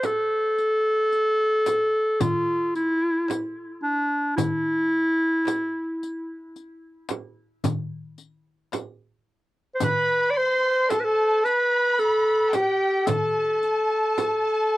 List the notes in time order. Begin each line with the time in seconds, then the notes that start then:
0.03 A4, riq, darbuka tek, frame drum
0.58 riq
1.12 riq
1.66 riq, darbuka tek, frame drum
2.20 F4, riq, darbuka dum, frame drum
2.75 E4, riq
3.28 riq, darbuka tek, frame drum
3.83 D4
4.36 E4, riq, frame drum, darbuka dum
5.45 riq, darbuka tek, frame drum
6.03 riq
6.56 riq
7.09 riq, darbuka tek, frame drum
7.64 riq, darbuka dum, frame drum
8.18 riq
8.72 riq, darbuka tek, frame drum
9.75 C5
9.80 B4 B5, riq, darbuka dum, frame drum
10.30 D5
10.35 C5 C6
10.90 A4 A5, riq, darbuka tek, frame drum
11.00 B4
11.04 A4 A5
11.44 B4 B5, riq
11.99 A4, riq
12.53 G4 G5, riq, darbuka tek, frame drum
13.07 A4 A5, riq, frame drum, darbuka dum
13.63 riq
14.18 riq, darbuka tek, frame drum